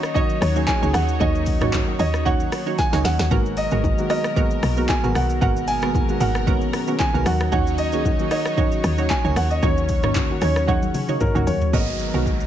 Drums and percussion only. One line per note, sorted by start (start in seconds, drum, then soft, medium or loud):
0.03 cross-stick loud
0.03 shaker medium
0.15 kick loud
0.15 low conga medium
0.15 shaker medium
0.29 shaker medium
0.42 cross-stick loud
0.42 open hi-hat medium
0.42 low bongo medium
0.42 shaker medium
0.56 shaker medium
0.68 kick loud
0.68 clap medium
0.68 high bongo medium
0.68 low bongo medium
0.68 shaker medium
0.83 shaker medium
0.94 cross-stick loud
0.94 open hi-hat medium
0.94 shaker loud
1.09 shaker medium
1.20 kick loud
1.20 low conga medium
1.20 shaker medium
1.35 shaker medium
1.46 kick loud
1.46 open hi-hat medium
1.46 shaker medium
1.61 cross-stick loud
1.61 mid tom medium
1.61 shaker medium
1.73 kick loud
1.73 clap loud
1.73 high bongo medium
1.73 low conga medium
1.73 shaker medium
1.99 open hi-hat medium
1.99 shaker loud
2.14 cross-stick loud
2.14 shaker medium
2.26 kick loud
2.26 low conga medium
2.26 shaker medium
2.40 shaker medium
2.52 cross-stick loud
2.52 open hi-hat medium
2.52 low bongo medium
2.52 shaker medium
2.66 shaker medium
2.78 kick medium
2.78 snare medium
2.78 high bongo medium
2.78 low bongo medium
2.78 shaker medium
2.93 snare medium
2.93 shaker medium
3.05 snare loud
3.05 open hi-hat medium
3.05 shaker medium
3.19 snare loud
3.19 shaker medium
3.31 kick loud
3.31 low conga medium
3.31 shaker medium
3.46 shaker medium
3.57 open hi-hat medium
3.57 shaker medium
3.71 shaker medium
3.84 kick loud
3.84 high bongo medium
3.84 low conga medium
3.84 shaker medium
3.98 shaker medium
4.10 cross-stick medium
4.10 open hi-hat medium
4.10 shaker loud
4.24 cross-stick loud
4.24 shaker medium
4.36 kick loud
4.36 low conga medium
4.36 shaker medium
4.51 shaker medium
4.63 cross-stick loud
4.63 open hi-hat medium
4.63 low bongo medium
4.63 shaker medium
4.77 shaker medium
4.89 kick medium
4.89 clap medium
4.89 high bongo medium
4.89 low bongo medium
4.89 shaker medium
5.04 shaker soft
5.15 cross-stick loud
5.15 open hi-hat medium
5.15 shaker loud
5.30 shaker medium
5.42 kick loud
5.42 low conga medium
5.42 shaker medium
5.57 shaker medium
5.68 open hi-hat medium
5.68 shaker medium
5.82 cross-stick loud
5.82 shaker medium
5.95 kick loud
5.95 high bongo medium
5.95 low conga medium
5.95 shaker medium
6.09 shaker medium
6.21 open hi-hat medium
6.21 shaker loud
6.35 cross-stick loud
6.35 shaker medium
6.47 kick loud
6.47 low conga medium
6.47 shaker medium
6.61 shaker medium
6.73 cross-stick loud
6.73 open hi-hat medium
6.73 low bongo medium
6.73 shaker medium
6.88 shaker medium
6.99 kick loud
6.99 clap medium
6.99 high bongo medium
6.99 low bongo medium
6.99 shaker medium
7.15 shaker soft
7.26 cross-stick loud
7.26 open hi-hat medium
7.26 shaker loud
7.40 cross-stick loud
7.40 shaker medium
7.52 kick loud
7.52 low conga medium
7.52 shaker medium
7.67 shaker medium
7.78 open hi-hat soft
7.78 shaker medium
7.92 shaker medium
8.05 kick loud
8.05 high bongo medium
8.05 low conga medium
8.05 shaker medium
8.19 shaker medium
8.31 cross-stick medium
8.31 open hi-hat medium
8.31 shaker medium
8.45 cross-stick loud
8.45 shaker medium
8.58 kick loud
8.58 low conga medium
8.58 shaker medium
8.72 shaker medium
8.84 cross-stick loud
8.84 open hi-hat medium
8.84 low bongo medium
8.84 shaker medium
8.98 shaker medium
9.10 kick loud
9.10 clap medium
9.10 high bongo medium
9.10 low bongo medium
9.10 shaker medium
9.25 shaker soft
9.36 cross-stick loud
9.36 open hi-hat medium
9.36 shaker loud
9.51 shaker medium
9.63 kick loud
9.63 low conga medium
9.63 shaker medium
9.78 shaker medium
9.89 kick loud
9.89 open hi-hat soft
9.89 shaker medium
10.03 cross-stick loud
10.03 mid tom medium
10.03 shaker medium
10.15 kick medium
10.15 clap loud
10.15 high bongo medium
10.15 low conga medium
10.15 shaker medium
10.42 cross-stick medium
10.42 open hi-hat medium
10.42 shaker loud
10.56 cross-stick loud
10.56 shaker medium
10.68 kick loud
10.68 high tom medium
10.68 low conga medium
10.68 shaker medium
10.82 high tom medium
10.82 shaker medium
10.94 open hi-hat medium
10.94 mid tom medium
10.94 low bongo medium
10.94 shaker medium
11.08 mid tom medium
11.08 shaker medium
11.21 kick loud
11.21 mid tom medium
11.21 high bongo medium
11.21 low bongo medium
11.21 shaker medium
11.35 mid tom medium
11.35 shaker soft
11.47 floor tom loud
11.47 open hi-hat medium
11.47 shaker loud
11.61 floor tom loud
11.61 shaker medium
11.73 kick loud
11.73 shaker medium
11.88 shaker medium
11.99 shaker medium
12.13 shaker soft
12.26 kick medium
12.26 shaker medium
12.40 shaker medium